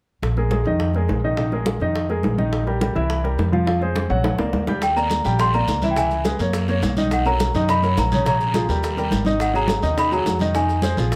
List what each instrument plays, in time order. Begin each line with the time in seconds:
0.22 upright bass A#1, high bongo, high conga
0.37 grand piano G#3 G#4 A#4, high bongo, high conga
0.51 grand piano G#3 G#4 A#4, high bongo, high conga
0.65 upright bass F2, grand piano D#3 D#4 D#5, high bongo, high conga
0.79 high bongo, high conga
0.94 grand piano G#3 G#4 A#4, high bongo, high conga
1.08 upright bass A#1, high bongo, low bongo, high conga
1.24 grand piano D#3 D#4 D#5
1.37 grand piano D#3 D#4 D#5, high bongo, high conga
1.52 grand piano G#3 G#4 A#4, high bongo, high conga
1.66 high bongo, high conga
1.80 upright bass F2, grand piano D#3 D#4 D#5, high bongo, high conga
1.95 high bongo, high conga
2.09 grand piano G#3 G#4 A#4, high bongo, high conga
2.23 upright bass A#1, high bongo, low bongo, high conga
2.38 grand piano D#3 D#4 D#5, high conga
2.53 high bongo, high conga
2.66 grand piano G3 G4 A#4, high bongo, high conga
2.81 grand piano G3 G4 A#4, high bongo, high conga
2.95 upright bass C2, grand piano E3 E4 E5, high bongo, high conga
3.10 high bongo, high conga
3.24 grand piano G3 G4 A#4, high bongo, high conga
3.38 upright bass F2, high bongo, low bongo, high conga
3.52 grand piano F3 F4 F5, high conga
3.67 grand piano F3 F4 F5, high bongo
3.81 grand piano G#3 G#4 C5, high bongo, high conga
3.96 high bongo, high conga
4.10 upright bass A#1, grand piano F#3 F#4 F#5, high conga
4.24 low bongo, high conga
4.38 upright bass C#2, grand piano A#3 A#4 D5, low bongo, high conga
4.53 upright bass D#2, low bongo, high conga
4.67 grand piano G3 G4 G5, low bongo, high conga
4.81 celesta G5, high bongo, high conga, long guiro, maracas
4.96 grand piano A#3 A#4 D5, celesta A#5, high bongo, high conga, maracas
5.10 high bongo, high conga, short guiro, maracas
5.24 upright bass A#1, grand piano G3 G4 G5, high bongo, high conga, short guiro, maracas
5.39 grand piano G3 G4 G5, celesta C6, high bongo, high conga, long guiro, maracas
5.54 grand piano A#3 A#4 D5, celesta A#5, high bongo, high conga, maracas
5.68 upright bass C#2, high bongo, low bongo, high conga, short guiro, maracas
5.82 grand piano E3 E4 E5, high conga, short guiro, maracas
5.91 celesta G5
5.96 grand piano E3 E4 E5, celesta G#5, high bongo, long guiro, maracas
6.11 high bongo, high conga, maracas
6.25 grand piano G#3 G#4 B4, high bongo, high conga, short guiro, maracas
6.39 upright bass F#2, grand piano A#3 A#4 C#5, high bongo, high conga, short guiro, maracas
6.53 high bongo, high conga, long guiro, maracas
6.68 grand piano A#3 A#4 C#5, high bongo, high conga, maracas
6.82 upright bass B1, high bongo, low bongo, high conga, short guiro, maracas
6.97 grand piano D#3 D#4 D#5, high conga, short guiro, maracas
7.11 celesta F#5, high bongo, high conga, long guiro, maracas
7.25 grand piano F#3 F#4 A#4, celesta A#5, high bongo, high conga, maracas
7.40 high bongo, high conga, short guiro, maracas
7.54 upright bass F#2, grand piano D#3 D#4 D#5, high bongo, high conga, short guiro, maracas
7.69 grand piano D#3 D#4 D#5, celesta B5, high bongo, high conga, long guiro, maracas
7.83 grand piano F#3 F#4 A#4, high bongo, high conga, maracas
7.97 upright bass A#1, celesta A#5, high bongo, low bongo, high conga, short guiro, maracas
8.12 grand piano C#3 C#4 C#5, high conga, short guiro, maracas
8.25 grand piano C#3 C#4 C#5, celesta A#5, high bongo, high conga, long guiro, maracas
8.40 high bongo, high conga, maracas
8.54 grand piano F3 F4 G#4, high bongo, high conga, short guiro, maracas
8.68 upright bass D#2, grand piano G3 G4 A#4, high bongo, high conga, short guiro, maracas
8.82 high bongo, high conga, long guiro, maracas
8.97 grand piano G3 G4 A#4, high bongo, high conga, maracas
9.11 upright bass G#1, high bongo, low bongo, high conga, short guiro, maracas
9.25 grand piano D#3 D#4 D#5, high conga, short guiro, maracas
9.39 celesta F#5, high bongo, high conga, long guiro, maracas
9.53 grand piano F#3 F#4 G#4, celesta A#5, high bongo, high conga, maracas
9.68 high bongo, high conga, short guiro, maracas
9.82 upright bass D#2, grand piano D#3 D#4 D#5, high bongo, high conga, short guiro, maracas
9.96 grand piano D#3 D#4 D#5, celesta B5, high bongo, high conga, long guiro, maracas
10.11 grand piano F#3 F#4 G#4, celesta A#5, high bongo, high conga, maracas
10.25 upright bass F2, high bongo, low bongo, high conga, short guiro, maracas
10.39 grand piano D#3 D#4 D#5, high conga, short guiro, maracas
10.54 grand piano D#3 D#4 D#5, celesta G#5, high bongo, high conga, long guiro, maracas
10.68 high bongo, high conga, maracas
10.82 grand piano G#3 G#4 C5, high bongo, high conga, short guiro, maracas
10.97 upright bass A#1, grand piano F3 F4 G#4, high bongo, high conga, short guiro, maracas
11.12 high bongo, high conga, long guiro, maracas